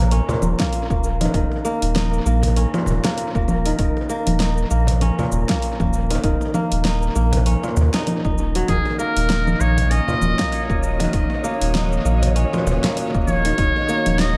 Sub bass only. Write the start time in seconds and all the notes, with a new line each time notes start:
Already playing: A#1
0.42 D#1
0.90 D#1
1.34 D#1
1.82 D#1
2.26 A#1
2.87 D#1
3.35 D#1
3.79 D#1
4.27 D#1
4.71 A#1
5.32 D#1
5.80 D#1
6.24 D#1
6.72 D#1
7.16 A#1
7.77 D#2
8.25 D#1
8.68 D#1
9.17 D#1
9.60 A#1
10.21 D#1
10.70 D#1
11.13 D#1
11.61 D#1
12.05 A#1
12.66 D#1
13.15 D#1
13.58 D#1
14.06 D#1